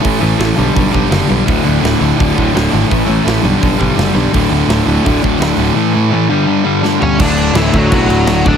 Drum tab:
CC |--------|--------|--------|--------|
HH |o-o-o-o-|o-o-o-o-|o-o-o-o-|o-o-o-o-|
SD |--o---o-|--o---o-|--o---o-|--o---o-|
FT |--------|--------|--------|--------|
BD |o---oo--|o---oo--|o---oo--|o---oo--|

CC |--------|xxxxxxxx|
HH |--------|--------|
SD |------o-|--o---o-|
FT |-------o|--------|
BD |--------|o--oo--o|